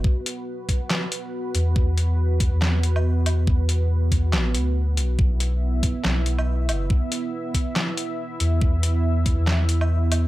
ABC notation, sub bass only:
X:1
M:4/4
L:1/16
Q:"Swing 16ths" 1/4=140
K:Clyd
V:1 name="Sub bass" clef=bass
z12 z2 E,,2- | E,,6- E,, E,,8- E,,- | E,,8 A,,,2 D,,4 B,,,2 | B,,,6- B,,, z B,,,6 F,,,2 |
z12 z2 E,,2- | E,,6- E,, E,,8- E,, |]